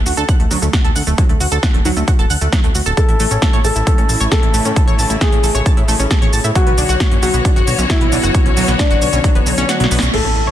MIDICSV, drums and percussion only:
0, 0, Header, 1, 2, 480
1, 0, Start_track
1, 0, Tempo, 447761
1, 1267, Time_signature, 4, 2, 24, 8
1, 11267, End_track
2, 0, Start_track
2, 0, Title_t, "Drums"
2, 67, Note_on_c, 9, 46, 95
2, 67, Note_on_c, 9, 82, 72
2, 175, Note_off_c, 9, 46, 0
2, 175, Note_off_c, 9, 82, 0
2, 187, Note_on_c, 9, 42, 49
2, 187, Note_on_c, 9, 82, 39
2, 295, Note_off_c, 9, 42, 0
2, 295, Note_off_c, 9, 82, 0
2, 307, Note_on_c, 9, 36, 120
2, 308, Note_on_c, 9, 42, 88
2, 308, Note_on_c, 9, 82, 29
2, 414, Note_off_c, 9, 36, 0
2, 415, Note_off_c, 9, 42, 0
2, 415, Note_off_c, 9, 82, 0
2, 428, Note_on_c, 9, 42, 50
2, 535, Note_off_c, 9, 42, 0
2, 547, Note_on_c, 9, 46, 107
2, 547, Note_on_c, 9, 82, 70
2, 655, Note_off_c, 9, 46, 0
2, 655, Note_off_c, 9, 82, 0
2, 668, Note_on_c, 9, 42, 52
2, 668, Note_on_c, 9, 82, 39
2, 775, Note_off_c, 9, 42, 0
2, 775, Note_off_c, 9, 82, 0
2, 787, Note_on_c, 9, 36, 117
2, 787, Note_on_c, 9, 38, 116
2, 787, Note_on_c, 9, 42, 85
2, 787, Note_on_c, 9, 82, 29
2, 894, Note_off_c, 9, 36, 0
2, 894, Note_off_c, 9, 38, 0
2, 894, Note_off_c, 9, 42, 0
2, 894, Note_off_c, 9, 82, 0
2, 907, Note_on_c, 9, 42, 49
2, 1014, Note_off_c, 9, 42, 0
2, 1027, Note_on_c, 9, 46, 96
2, 1027, Note_on_c, 9, 82, 72
2, 1134, Note_off_c, 9, 46, 0
2, 1134, Note_off_c, 9, 82, 0
2, 1147, Note_on_c, 9, 42, 52
2, 1147, Note_on_c, 9, 82, 41
2, 1254, Note_off_c, 9, 42, 0
2, 1254, Note_off_c, 9, 82, 0
2, 1267, Note_on_c, 9, 36, 124
2, 1267, Note_on_c, 9, 42, 85
2, 1267, Note_on_c, 9, 82, 30
2, 1374, Note_off_c, 9, 36, 0
2, 1374, Note_off_c, 9, 42, 0
2, 1374, Note_off_c, 9, 82, 0
2, 1387, Note_on_c, 9, 42, 49
2, 1494, Note_off_c, 9, 42, 0
2, 1507, Note_on_c, 9, 46, 105
2, 1507, Note_on_c, 9, 82, 74
2, 1614, Note_off_c, 9, 46, 0
2, 1614, Note_off_c, 9, 82, 0
2, 1627, Note_on_c, 9, 42, 49
2, 1627, Note_on_c, 9, 82, 41
2, 1734, Note_off_c, 9, 42, 0
2, 1734, Note_off_c, 9, 82, 0
2, 1747, Note_on_c, 9, 36, 123
2, 1748, Note_on_c, 9, 38, 117
2, 1748, Note_on_c, 9, 42, 83
2, 1748, Note_on_c, 9, 82, 31
2, 1854, Note_off_c, 9, 36, 0
2, 1855, Note_off_c, 9, 38, 0
2, 1855, Note_off_c, 9, 42, 0
2, 1855, Note_off_c, 9, 82, 0
2, 1867, Note_on_c, 9, 42, 48
2, 1975, Note_off_c, 9, 42, 0
2, 1987, Note_on_c, 9, 46, 96
2, 1987, Note_on_c, 9, 63, 63
2, 1987, Note_on_c, 9, 82, 74
2, 2094, Note_off_c, 9, 46, 0
2, 2094, Note_off_c, 9, 63, 0
2, 2094, Note_off_c, 9, 82, 0
2, 2108, Note_on_c, 9, 42, 48
2, 2108, Note_on_c, 9, 82, 39
2, 2215, Note_off_c, 9, 42, 0
2, 2215, Note_off_c, 9, 82, 0
2, 2227, Note_on_c, 9, 36, 118
2, 2228, Note_on_c, 9, 42, 85
2, 2228, Note_on_c, 9, 82, 31
2, 2334, Note_off_c, 9, 36, 0
2, 2335, Note_off_c, 9, 42, 0
2, 2335, Note_off_c, 9, 82, 0
2, 2348, Note_on_c, 9, 42, 48
2, 2455, Note_off_c, 9, 42, 0
2, 2468, Note_on_c, 9, 46, 107
2, 2468, Note_on_c, 9, 82, 73
2, 2575, Note_off_c, 9, 46, 0
2, 2575, Note_off_c, 9, 82, 0
2, 2588, Note_on_c, 9, 42, 48
2, 2588, Note_on_c, 9, 82, 42
2, 2695, Note_off_c, 9, 42, 0
2, 2695, Note_off_c, 9, 82, 0
2, 2707, Note_on_c, 9, 36, 120
2, 2708, Note_on_c, 9, 38, 112
2, 2708, Note_on_c, 9, 42, 83
2, 2708, Note_on_c, 9, 82, 30
2, 2814, Note_off_c, 9, 36, 0
2, 2815, Note_off_c, 9, 38, 0
2, 2815, Note_off_c, 9, 42, 0
2, 2815, Note_off_c, 9, 82, 0
2, 2828, Note_on_c, 9, 42, 48
2, 2935, Note_off_c, 9, 42, 0
2, 2948, Note_on_c, 9, 46, 94
2, 2948, Note_on_c, 9, 82, 74
2, 3055, Note_off_c, 9, 46, 0
2, 3055, Note_off_c, 9, 82, 0
2, 3068, Note_on_c, 9, 42, 49
2, 3068, Note_on_c, 9, 82, 42
2, 3176, Note_off_c, 9, 42, 0
2, 3176, Note_off_c, 9, 82, 0
2, 3187, Note_on_c, 9, 36, 122
2, 3188, Note_on_c, 9, 42, 85
2, 3188, Note_on_c, 9, 82, 32
2, 3294, Note_off_c, 9, 36, 0
2, 3295, Note_off_c, 9, 42, 0
2, 3295, Note_off_c, 9, 82, 0
2, 3308, Note_on_c, 9, 42, 51
2, 3415, Note_off_c, 9, 42, 0
2, 3428, Note_on_c, 9, 46, 103
2, 3428, Note_on_c, 9, 82, 77
2, 3535, Note_off_c, 9, 46, 0
2, 3535, Note_off_c, 9, 82, 0
2, 3548, Note_on_c, 9, 42, 50
2, 3548, Note_on_c, 9, 82, 42
2, 3655, Note_off_c, 9, 42, 0
2, 3655, Note_off_c, 9, 82, 0
2, 3667, Note_on_c, 9, 36, 114
2, 3668, Note_on_c, 9, 38, 113
2, 3668, Note_on_c, 9, 42, 85
2, 3668, Note_on_c, 9, 82, 31
2, 3774, Note_off_c, 9, 36, 0
2, 3775, Note_off_c, 9, 38, 0
2, 3775, Note_off_c, 9, 42, 0
2, 3775, Note_off_c, 9, 82, 0
2, 3788, Note_on_c, 9, 42, 51
2, 3895, Note_off_c, 9, 42, 0
2, 3908, Note_on_c, 9, 46, 93
2, 3908, Note_on_c, 9, 82, 77
2, 4015, Note_off_c, 9, 46, 0
2, 4015, Note_off_c, 9, 82, 0
2, 4028, Note_on_c, 9, 42, 49
2, 4028, Note_on_c, 9, 82, 43
2, 4135, Note_off_c, 9, 42, 0
2, 4135, Note_off_c, 9, 82, 0
2, 4147, Note_on_c, 9, 36, 115
2, 4148, Note_on_c, 9, 42, 89
2, 4148, Note_on_c, 9, 82, 33
2, 4254, Note_off_c, 9, 36, 0
2, 4255, Note_off_c, 9, 42, 0
2, 4255, Note_off_c, 9, 82, 0
2, 4268, Note_on_c, 9, 42, 51
2, 4375, Note_off_c, 9, 42, 0
2, 4387, Note_on_c, 9, 46, 104
2, 4387, Note_on_c, 9, 82, 74
2, 4495, Note_off_c, 9, 46, 0
2, 4495, Note_off_c, 9, 82, 0
2, 4507, Note_on_c, 9, 42, 50
2, 4507, Note_on_c, 9, 82, 43
2, 4615, Note_off_c, 9, 42, 0
2, 4615, Note_off_c, 9, 82, 0
2, 4627, Note_on_c, 9, 36, 114
2, 4627, Note_on_c, 9, 38, 110
2, 4627, Note_on_c, 9, 42, 88
2, 4627, Note_on_c, 9, 82, 32
2, 4734, Note_off_c, 9, 36, 0
2, 4735, Note_off_c, 9, 38, 0
2, 4735, Note_off_c, 9, 42, 0
2, 4735, Note_off_c, 9, 82, 0
2, 4747, Note_on_c, 9, 42, 50
2, 4854, Note_off_c, 9, 42, 0
2, 4867, Note_on_c, 9, 46, 90
2, 4867, Note_on_c, 9, 82, 78
2, 4974, Note_off_c, 9, 46, 0
2, 4974, Note_off_c, 9, 82, 0
2, 4987, Note_on_c, 9, 42, 49
2, 4987, Note_on_c, 9, 82, 44
2, 5094, Note_off_c, 9, 42, 0
2, 5094, Note_off_c, 9, 82, 0
2, 5107, Note_on_c, 9, 36, 118
2, 5107, Note_on_c, 9, 42, 90
2, 5107, Note_on_c, 9, 82, 33
2, 5214, Note_off_c, 9, 36, 0
2, 5214, Note_off_c, 9, 42, 0
2, 5214, Note_off_c, 9, 82, 0
2, 5227, Note_on_c, 9, 42, 52
2, 5334, Note_off_c, 9, 42, 0
2, 5347, Note_on_c, 9, 46, 98
2, 5347, Note_on_c, 9, 82, 76
2, 5455, Note_off_c, 9, 46, 0
2, 5455, Note_off_c, 9, 82, 0
2, 5467, Note_on_c, 9, 42, 50
2, 5467, Note_on_c, 9, 82, 44
2, 5575, Note_off_c, 9, 42, 0
2, 5575, Note_off_c, 9, 82, 0
2, 5587, Note_on_c, 9, 36, 115
2, 5588, Note_on_c, 9, 38, 111
2, 5588, Note_on_c, 9, 42, 89
2, 5588, Note_on_c, 9, 82, 32
2, 5694, Note_off_c, 9, 36, 0
2, 5695, Note_off_c, 9, 38, 0
2, 5695, Note_off_c, 9, 42, 0
2, 5695, Note_off_c, 9, 82, 0
2, 5707, Note_on_c, 9, 42, 52
2, 5815, Note_off_c, 9, 42, 0
2, 5828, Note_on_c, 9, 46, 89
2, 5828, Note_on_c, 9, 82, 77
2, 5935, Note_off_c, 9, 46, 0
2, 5935, Note_off_c, 9, 82, 0
2, 5948, Note_on_c, 9, 42, 50
2, 5948, Note_on_c, 9, 82, 44
2, 6055, Note_off_c, 9, 42, 0
2, 6055, Note_off_c, 9, 82, 0
2, 6067, Note_on_c, 9, 36, 115
2, 6067, Note_on_c, 9, 42, 91
2, 6067, Note_on_c, 9, 82, 32
2, 6174, Note_off_c, 9, 36, 0
2, 6175, Note_off_c, 9, 42, 0
2, 6175, Note_off_c, 9, 82, 0
2, 6187, Note_on_c, 9, 42, 52
2, 6294, Note_off_c, 9, 42, 0
2, 6307, Note_on_c, 9, 46, 100
2, 6307, Note_on_c, 9, 82, 79
2, 6415, Note_off_c, 9, 46, 0
2, 6415, Note_off_c, 9, 82, 0
2, 6427, Note_on_c, 9, 42, 53
2, 6427, Note_on_c, 9, 82, 43
2, 6534, Note_off_c, 9, 42, 0
2, 6534, Note_off_c, 9, 82, 0
2, 6546, Note_on_c, 9, 36, 112
2, 6547, Note_on_c, 9, 38, 109
2, 6547, Note_on_c, 9, 42, 86
2, 6547, Note_on_c, 9, 82, 33
2, 6654, Note_off_c, 9, 36, 0
2, 6654, Note_off_c, 9, 38, 0
2, 6654, Note_off_c, 9, 42, 0
2, 6654, Note_off_c, 9, 82, 0
2, 6667, Note_on_c, 9, 42, 53
2, 6775, Note_off_c, 9, 42, 0
2, 6787, Note_on_c, 9, 46, 89
2, 6787, Note_on_c, 9, 82, 79
2, 6894, Note_off_c, 9, 46, 0
2, 6894, Note_off_c, 9, 82, 0
2, 6907, Note_on_c, 9, 42, 52
2, 6907, Note_on_c, 9, 82, 44
2, 7014, Note_off_c, 9, 42, 0
2, 7014, Note_off_c, 9, 82, 0
2, 7026, Note_on_c, 9, 36, 114
2, 7027, Note_on_c, 9, 42, 95
2, 7027, Note_on_c, 9, 82, 31
2, 7134, Note_off_c, 9, 36, 0
2, 7134, Note_off_c, 9, 42, 0
2, 7134, Note_off_c, 9, 82, 0
2, 7147, Note_on_c, 9, 42, 54
2, 7254, Note_off_c, 9, 42, 0
2, 7267, Note_on_c, 9, 46, 99
2, 7267, Note_on_c, 9, 82, 72
2, 7374, Note_off_c, 9, 46, 0
2, 7374, Note_off_c, 9, 82, 0
2, 7387, Note_on_c, 9, 42, 53
2, 7387, Note_on_c, 9, 82, 43
2, 7494, Note_off_c, 9, 42, 0
2, 7494, Note_off_c, 9, 82, 0
2, 7506, Note_on_c, 9, 36, 115
2, 7507, Note_on_c, 9, 38, 115
2, 7507, Note_on_c, 9, 42, 92
2, 7507, Note_on_c, 9, 82, 31
2, 7613, Note_off_c, 9, 36, 0
2, 7614, Note_off_c, 9, 38, 0
2, 7614, Note_off_c, 9, 42, 0
2, 7614, Note_off_c, 9, 82, 0
2, 7627, Note_on_c, 9, 42, 54
2, 7734, Note_off_c, 9, 42, 0
2, 7747, Note_on_c, 9, 46, 88
2, 7747, Note_on_c, 9, 82, 75
2, 7854, Note_off_c, 9, 46, 0
2, 7854, Note_off_c, 9, 82, 0
2, 7867, Note_on_c, 9, 42, 52
2, 7867, Note_on_c, 9, 82, 41
2, 7974, Note_off_c, 9, 42, 0
2, 7974, Note_off_c, 9, 82, 0
2, 7986, Note_on_c, 9, 36, 111
2, 7987, Note_on_c, 9, 42, 93
2, 7987, Note_on_c, 9, 82, 32
2, 8093, Note_off_c, 9, 36, 0
2, 8094, Note_off_c, 9, 42, 0
2, 8094, Note_off_c, 9, 82, 0
2, 8107, Note_on_c, 9, 42, 54
2, 8214, Note_off_c, 9, 42, 0
2, 8227, Note_on_c, 9, 46, 98
2, 8227, Note_on_c, 9, 82, 76
2, 8334, Note_off_c, 9, 46, 0
2, 8334, Note_off_c, 9, 82, 0
2, 8346, Note_on_c, 9, 42, 54
2, 8346, Note_on_c, 9, 82, 44
2, 8454, Note_off_c, 9, 42, 0
2, 8454, Note_off_c, 9, 82, 0
2, 8466, Note_on_c, 9, 36, 110
2, 8467, Note_on_c, 9, 38, 115
2, 8467, Note_on_c, 9, 42, 94
2, 8467, Note_on_c, 9, 82, 31
2, 8573, Note_off_c, 9, 36, 0
2, 8574, Note_off_c, 9, 38, 0
2, 8574, Note_off_c, 9, 42, 0
2, 8574, Note_off_c, 9, 82, 0
2, 8586, Note_on_c, 9, 42, 54
2, 8693, Note_off_c, 9, 42, 0
2, 8707, Note_on_c, 9, 46, 88
2, 8707, Note_on_c, 9, 82, 75
2, 8814, Note_off_c, 9, 46, 0
2, 8814, Note_off_c, 9, 82, 0
2, 8827, Note_on_c, 9, 42, 53
2, 8827, Note_on_c, 9, 82, 43
2, 8934, Note_off_c, 9, 42, 0
2, 8934, Note_off_c, 9, 82, 0
2, 8946, Note_on_c, 9, 36, 122
2, 8946, Note_on_c, 9, 42, 94
2, 8946, Note_on_c, 9, 82, 32
2, 9053, Note_off_c, 9, 36, 0
2, 9054, Note_off_c, 9, 42, 0
2, 9054, Note_off_c, 9, 82, 0
2, 9066, Note_on_c, 9, 42, 55
2, 9173, Note_off_c, 9, 42, 0
2, 9186, Note_on_c, 9, 46, 101
2, 9186, Note_on_c, 9, 82, 73
2, 9293, Note_off_c, 9, 46, 0
2, 9293, Note_off_c, 9, 82, 0
2, 9306, Note_on_c, 9, 38, 36
2, 9306, Note_on_c, 9, 42, 55
2, 9306, Note_on_c, 9, 82, 40
2, 9413, Note_off_c, 9, 38, 0
2, 9413, Note_off_c, 9, 42, 0
2, 9413, Note_off_c, 9, 82, 0
2, 9426, Note_on_c, 9, 36, 111
2, 9426, Note_on_c, 9, 38, 119
2, 9426, Note_on_c, 9, 42, 94
2, 9426, Note_on_c, 9, 82, 31
2, 9533, Note_off_c, 9, 38, 0
2, 9533, Note_off_c, 9, 42, 0
2, 9533, Note_off_c, 9, 82, 0
2, 9534, Note_off_c, 9, 36, 0
2, 9546, Note_on_c, 9, 42, 56
2, 9653, Note_off_c, 9, 42, 0
2, 9667, Note_on_c, 9, 46, 92
2, 9667, Note_on_c, 9, 82, 71
2, 9774, Note_off_c, 9, 46, 0
2, 9774, Note_off_c, 9, 82, 0
2, 9787, Note_on_c, 9, 42, 53
2, 9787, Note_on_c, 9, 82, 41
2, 9894, Note_off_c, 9, 42, 0
2, 9894, Note_off_c, 9, 82, 0
2, 9906, Note_on_c, 9, 36, 110
2, 9907, Note_on_c, 9, 42, 96
2, 9907, Note_on_c, 9, 82, 31
2, 10013, Note_off_c, 9, 36, 0
2, 10014, Note_off_c, 9, 42, 0
2, 10014, Note_off_c, 9, 82, 0
2, 10027, Note_on_c, 9, 42, 56
2, 10134, Note_off_c, 9, 42, 0
2, 10147, Note_on_c, 9, 46, 104
2, 10147, Note_on_c, 9, 82, 73
2, 10254, Note_off_c, 9, 46, 0
2, 10254, Note_off_c, 9, 82, 0
2, 10267, Note_on_c, 9, 42, 56
2, 10267, Note_on_c, 9, 82, 41
2, 10374, Note_off_c, 9, 42, 0
2, 10374, Note_off_c, 9, 82, 0
2, 10387, Note_on_c, 9, 38, 65
2, 10387, Note_on_c, 9, 42, 96
2, 10387, Note_on_c, 9, 82, 30
2, 10494, Note_off_c, 9, 38, 0
2, 10494, Note_off_c, 9, 42, 0
2, 10494, Note_off_c, 9, 82, 0
2, 10506, Note_on_c, 9, 42, 56
2, 10546, Note_on_c, 9, 38, 84
2, 10614, Note_off_c, 9, 42, 0
2, 10626, Note_on_c, 9, 46, 87
2, 10626, Note_on_c, 9, 82, 73
2, 10653, Note_off_c, 9, 38, 0
2, 10706, Note_on_c, 9, 38, 98
2, 10733, Note_off_c, 9, 46, 0
2, 10733, Note_off_c, 9, 82, 0
2, 10746, Note_on_c, 9, 42, 55
2, 10746, Note_on_c, 9, 82, 42
2, 10813, Note_off_c, 9, 38, 0
2, 10854, Note_off_c, 9, 42, 0
2, 10854, Note_off_c, 9, 82, 0
2, 10866, Note_on_c, 9, 49, 75
2, 10974, Note_off_c, 9, 49, 0
2, 11267, End_track
0, 0, End_of_file